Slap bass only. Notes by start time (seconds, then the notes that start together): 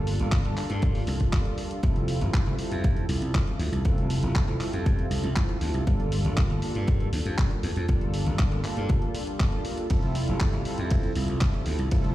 Already playing: G1
0.20 G1
0.45 G1
0.57 muted slap bass stroke
0.70 G2
1.08 C2
1.83 F1
2.21 F1
2.47 F1
2.71 F2
3.09 C2
3.21 C2
3.59 D2
3.72 C2
3.85 F1
4.23 F1
4.48 F1
4.61 muted slap bass stroke
4.73 F2
5.11 C2
5.23 C2
5.62 D2
5.74 C2
5.87 G1
6.25 G1
6.50 G1
6.75 G2
7.13 D2
7.26 F2
7.63 E2
7.76 F2
7.89 G1
8.26 G1
8.52 G1
8.64 muted slap bass stroke
8.77 G2
8.89 F1
9.90 F1
10.29 F1
10.53 F1
10.79 F2
11.16 C2
11.29 C2
11.66 D2
11.79 C2
11.92 F1